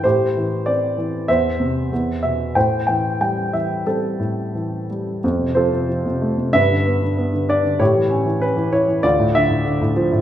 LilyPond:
<<
  \new Staff \with { instrumentName = "Grand piano" } { \time 4/4 \key a \minor \tempo 4 = 94 << { c''4 d''4 e''4. e''8 | g''8 g''8 g''8 e''8 a'4. r8 | r8 c''4. e''4. d''8 | cis''4 b'8 cis''8 d''8 e''4 r8 | } \\ { g'2 c''4. r8 | c''2 c'2 | r8 a'4. b'2 | g'2 f'2 | } >> }
  \new Staff \with { instrumentName = "Grand piano" } { \clef bass \time 4/4 \key a \minor a,8 e8 c'8 e8 e,8 c8 e,8 b,8 | a,8 e8 g8 e8 g8 a,8 e8 g8 | f,16 c16 f16 c16 f16 c16 a16 c16 g,16 d16 b16 d16 b16 d16 d'16 d16 | a,16 e16 cis'16 e16 cis'16 e16 e'16 e16 d,16 a,16 d16 a,16 d16 a,16 f16 a,16 | }
>>